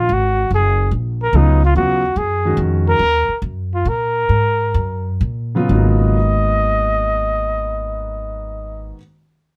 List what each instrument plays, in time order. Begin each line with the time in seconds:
0.00 trumpet F4
0.09 upright bass G#1
0.13 trumpet F#4
0.51 upright bass F#1, trumpet G#4
0.91 upright bass A#1
1.23 trumpet A#4
1.33 upright bass C#2, grand piano C#3 F#3 B3 F4, trumpet D#4
1.64 trumpet F4
1.75 upright bass D#2, grand piano C#3 F#3 B3 F4, trumpet F#4
2.16 upright bass F#2, trumpet G#4
2.45 grand piano D#3 G#3 C#4 F#4
2.57 upright bass F2
2.88 trumpet A#4
2.99 upright bass D#2
3.29 muted upright bass stroke
3.42 upright bass F#2
3.74 trumpet F4
3.85 upright bass A#2, trumpet A#4
4.29 upright bass G#2
4.74 upright bass F#2
5.21 upright bass A#2
5.55 grand piano C#3 F#3 B3 F4
5.69 upright bass G#1, grand piano G#2 D#3 A#3 B3, trumpet D#5
5.74 grand piano F#4